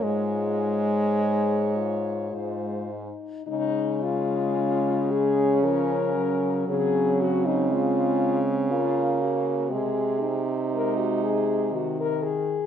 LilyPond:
<<
  \new Staff \with { instrumentName = "French horn" } { \time 3/4 \key des \major \tempo 4 = 57 f'4 aes'8 f'8 f'8 ees'8 | ees'8 f'4 aes'8 bes'4 | aes'8 ges'16 ees'16 f'4 f'8 ges'8 | aes'8. r16 bes'16 ges'16 aes'8 ges'16 bes'16 aes'8 | }
  \new Staff \with { instrumentName = "French horn" } { \time 3/4 \key des \major des''2 c''8 r8 | r4 des'2 | c'2 bes4 | aes8 ees'2~ ees'16 r16 | }
  \new Staff \with { instrumentName = "French horn" } { \clef bass \time 3/4 \key des \major aes2~ aes8 r8 | aes2 f8 ges8~ | ges4 aes4 bes4 | c'8. r16 aes4 ees4 | }
  \new Staff \with { instrumentName = "French horn" } { \clef bass \time 3/4 \key des \major aes,2 aes,8 r8 | des2. | des2. | c2~ c8. r16 | }
>>